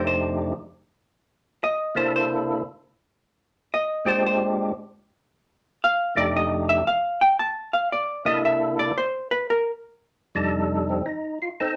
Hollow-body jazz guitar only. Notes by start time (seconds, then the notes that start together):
0.07 C5
1.64 D#5
1.97 C5
2.16 C5
3.74 D#5
4.08 C5
4.26 C5
5.84 F5
6.17 D5
6.37 D#5
6.69 E5
6.87 F5
7.21 G5
7.39 A5
7.73 F5
7.92 D5
8.26 D#5
8.45 E5
8.79 D5
8.98 C5
9.31 B4
9.50 A#4